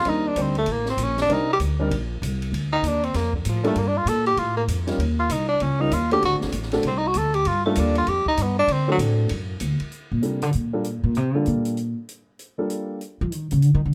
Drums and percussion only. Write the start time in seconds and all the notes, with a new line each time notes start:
0.05 ride
0.36 hi-hat pedal, ride
0.55 ride
0.66 ride
0.86 snare
0.98 hi-hat pedal, ride
1.18 snare, ride
1.30 ride
1.60 hi-hat pedal, ride
1.91 ride
2.23 hi-hat pedal, ride
2.42 ride
2.54 ride
2.84 hi-hat pedal, ride
3.03 ride
3.14 snare, ride
3.33 kick
3.45 hi-hat pedal, ride
3.64 ride
3.76 ride
4.07 hi-hat pedal, ride
4.26 ride
4.37 ride
4.68 hi-hat pedal, ride
4.87 snare, ride
5.00 ride
5.29 hi-hat pedal, ride
5.60 ride
5.91 hi-hat pedal, ride
6.11 ride
6.23 ride
6.41 snare
6.52 hi-hat pedal, ride
6.62 snare
6.71 snare, ride
6.83 ride
7.14 hi-hat pedal, ride
7.34 ride
7.45 ride
7.75 hi-hat pedal, ride
7.95 ride
8.07 ride
8.26 kick
8.37 hi-hat pedal, ride
8.68 ride
8.99 hi-hat pedal, ride
9.29 ride
9.60 hi-hat pedal, ride
9.80 ride
9.92 closed hi-hat
10.23 closed hi-hat
10.42 closed hi-hat
10.53 closed hi-hat
10.84 closed hi-hat
11.15 closed hi-hat
11.46 closed hi-hat
11.65 closed hi-hat
11.77 closed hi-hat
12.09 closed hi-hat
12.39 closed hi-hat
12.70 closed hi-hat
13.01 closed hi-hat
13.32 closed hi-hat
13.51 closed hi-hat
13.62 closed hi-hat